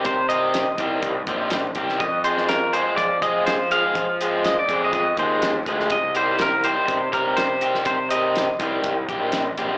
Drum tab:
HH |x-x-x-x-x-x-x-x-|x-x-x-x-x-x-x-x-|x-x-x-x-x-x-x-x-|x-x-x-x-x-x-x-x-|
SD |----o-------o--o|---oo-------o---|----o-------o--o|----o-------o--o|
BD |o-----o-o-o---o-|o-------o-o-----|o-----o-o-o---o-|o-------o-o-----|

HH |x-x-x-x-x-x-x-x-|
SD |----o-------o---|
BD |o-----o-o-o---o-|